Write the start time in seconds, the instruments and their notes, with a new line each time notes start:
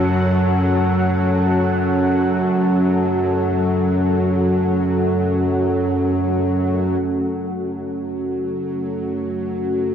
Already playing: synth drone F#2 F#3, ambient pad C#4 F#4 A4, synth texture F#5
7.00 synth drone F#2 F#3